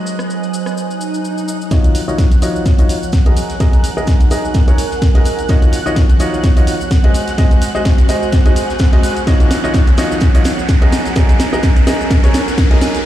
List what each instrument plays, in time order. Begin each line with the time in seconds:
Already playing: ambient pad F#3 D#4 G#5, grand piano G#3 F#4 G#4 C5 D#5, analog synth pad D#5 F#6
0.05 ambient pad C5, shaker
0.19 cross-stick, shaker
0.30 shaker
0.43 shaker
0.54 shaker
0.66 cross-stick, shaker
0.77 swell, shaker
0.91 shaker
1.01 shaker
1.14 shaker
1.25 shaker
1.38 shaker
1.48 shaker
1.61 shaker
1.71 fm bass D#1, grand piano D#3 F4 F#4 C#5 D#5, ambient pad F3, analog synth pad F#5 F#6, kick, snare, closed hi-hat, riser, shaker
1.84 closed hi-hat, shaker
1.95 open hi-hat, shaker
2.06 fm bass D#1, grand piano D#3 F4 F#4 C#5 D#5, ambient pad F#5, shaker
2.18 ambient pad C#5, kick, snare, closed hi-hat, shaker
2.32 closed hi-hat, shaker
2.42 fm bass D#1, grand piano D#3 F4 F#4 C#5 D#5, open hi-hat, shaker
2.56 shaker
2.66 kick, snare, closed hi-hat, shaker
2.78 fm bass D#1, grand piano D#3 F4 F#4 C#5 D#5, closed hi-hat, shaker
2.89 open hi-hat, shaker
3.03 shaker
3.12 fm bass F#1, kick, snare, closed hi-hat, shaker
3.26 grand piano F#3 F#4 G#4 A#4 D#5, closed hi-hat
3.37 ambient pad D#4, open hi-hat, shaker
3.50 ambient pad G#5, snare, closed hi-hat, shaker
3.60 fm bass F#1, grand piano F#3 F#4 G#4 A#4 D#5, kick, snare, closed hi-hat, shaker
3.73 ambient pad A#4, closed hi-hat, shaker
3.84 open hi-hat, shaker
3.97 fm bass F#1, grand piano F#3 F#4 G#4 A#4 D#5, shaker
4.07 kick, snare, closed hi-hat, shaker
4.21 closed hi-hat, shaker
4.31 fm bass F#1, grand piano F#3 F#4 G#4 A#4 D#5, open hi-hat, shaker
4.45 shaker
4.54 kick, snare, closed hi-hat, shaker
4.68 fm bass F#1, grand piano F#3 F#4 G#4 A#4 C#5, closed hi-hat, shaker
4.78 open hi-hat, shaker
4.91 snare, shaker
5.02 fm bass F#1, kick, snare, closed hi-hat, shaker
5.15 grand piano F#3 F#4 G#4 A#4 D#5, snare, closed hi-hat
5.25 snare, open hi-hat, shaker
5.39 closed hi-hat, shaker
5.49 fm bass D#1, grand piano D#3 F4 F#4 C#5 D#5, ambient pad F3, kick, snare, closed hi-hat, shaker
5.62 closed hi-hat, shaker
5.73 open hi-hat, shaker
5.86 fm bass D#1, grand piano D#3 F4 F#4 C#5 D#5, shaker
5.96 ambient pad C#5, kick, snare, closed hi-hat, shaker
6.10 closed hi-hat, shaker
6.16 fm bass D#1, grand piano D#3 F4 F#4 C#5 D#5, ambient pad F#5, open hi-hat, shaker
6.21 shaker
6.34 shaker
6.44 kick, snare, closed hi-hat, shaker
6.57 fm bass D#1, grand piano D#3 F4 F#4 C#5 D#5, closed hi-hat, shaker
6.67 open hi-hat, shaker
6.81 shaker
6.91 fm bass G#1, kick, snare, closed hi-hat, shaker
7.04 grand piano G#3 F#4 G#4 C5 D#5, closed hi-hat
7.14 ambient pad F#4, open hi-hat, shaker
7.28 snare, closed hi-hat, shaker
7.38 fm bass G#1, grand piano G#3 F#4 G#4 C5 D#5, kick, snare, closed hi-hat, shaker
7.51 closed hi-hat, shaker
7.61 ambient pad C5, open hi-hat, shaker
7.67 ambient pad G#5
7.75 fm bass G#1, grand piano G#3 F#4 G#4 C5 D#5, shaker
7.85 kick, snare, closed hi-hat, shaker
7.98 closed hi-hat, shaker
8.09 fm bass G#1, grand piano G#3 F#4 G#4 C5 D#5, open hi-hat, shaker
8.23 shaker
8.32 kick, snare, closed hi-hat, shaker
8.46 fm bass G#2, grand piano G#3 F#4 G#4 C5 D#5, closed hi-hat, shaker
8.56 open hi-hat, shaker
8.70 snare, shaker
8.79 fm bass D#2, kick, snare, closed hi-hat, shaker
8.80 shaker
8.93 grand piano G#3 F#4 G#4 C5 D#5, snare, closed hi-hat
9.03 snare, open hi-hat, shaker
9.17 closed hi-hat, shaker
9.27 grand piano D#3 F4 F#4 C#5 D#5, ambient pad F3, kick, snare, closed hi-hat, shaker
9.40 closed hi-hat, shaker
9.51 snare, open hi-hat, shaker
9.58 ambient pad C#5
9.64 fm bass D#1, grand piano D#3 F4 F#4 C#5 D#5, shaker
9.74 kick, snare, closed hi-hat, shaker
9.87 closed hi-hat, shaker
9.98 fm bass D#1, grand piano D#3 F4 F#4 C#5 D#5, snare, open hi-hat, shaker
10.02 ambient pad F#5
10.12 shaker
10.21 kick, snare, closed hi-hat, shaker
10.22 shaker
10.35 fm bass D#1, grand piano D#3 F4 F#4 C#5 D#5, closed hi-hat, shaker
10.45 snare, open hi-hat, shaker
10.59 shaker
10.69 fm bass F#1, kick, snare, closed hi-hat, shaker
10.82 grand piano F#3 F#4 G#4 A#4 D#5, closed hi-hat
10.92 ambient pad D#4, snare, open hi-hat, shaker
11.06 snare, closed hi-hat, shaker
11.16 fm bass F#1, grand piano F#3 F#4 G#4 A#4 D#5, ambient pad A#4, kick, snare, closed hi-hat, shaker
11.29 closed hi-hat, shaker
11.33 ambient pad G#5
11.40 snare, open hi-hat, shaker
11.53 fm bass F#1, grand piano F#3 F#4 G#4 A#4 D#5, shaker
11.63 kick, snare, closed hi-hat, shaker
11.76 closed hi-hat, shaker
11.87 fm bass F#1, grand piano F#3 F#4 G#4 A#4 D#5, snare, open hi-hat, shaker
12.01 shaker
12.11 kick, snare, closed hi-hat, shaker
12.24 fm bass F#1, grand piano F#3 F#4 G#4 A#4 C#5, closed hi-hat, shaker
12.34 snare, open hi-hat, shaker
12.47 snare, shaker
12.58 kick, snare, closed hi-hat, shaker
12.71 grand piano F#3 F#4 G#4 A#4 D#5, snare, closed hi-hat
12.81 snare, open hi-hat, shaker
12.95 closed hi-hat, shaker